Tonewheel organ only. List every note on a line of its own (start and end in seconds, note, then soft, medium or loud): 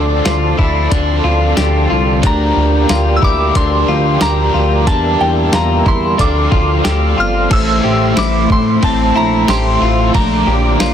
0.00 2.20 A4 medium
0.00 6.15 D5 medium
0.00 2.19 A5 medium
0.00 2.19 C6 medium
2.23 4.85 G4 medium
2.23 6.15 A#4 medium
2.23 4.85 G5 medium
4.87 6.18 G4 medium
4.87 6.18 E5 medium
6.20 7.50 A4 medium
6.20 7.50 D5 medium
6.20 7.50 F5 medium
6.20 7.50 C6 medium
7.52 10.12 A3 medium
7.52 10.13 C5 medium
7.52 10.12 E5 medium
7.52 10.13 C6 medium
10.14 10.94 D5 medium
10.14 10.94 D6 medium